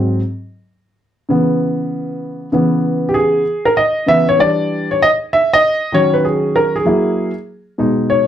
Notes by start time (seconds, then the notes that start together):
Already playing: G#2 F#3 C4
1.29 C#3 E3 B3
2.52 C#3 E3 B3
3.09 G4
3.14 G#4
3.65 A#4
3.77 D#5
4.06 C#3 E3 B3 E5
4.29 C#5
4.39 E3 G3 D4 D5
4.91 C#5
5.02 D#5
5.33 E5
5.53 D#5
5.92 D#3 F#3 C#4 C#5
6.13 B4
6.25 G#4
6.56 A#4
6.76 G#4
6.85 F#3 A#3 E4
7.78 B2 G#3 D#4
8.10 C#5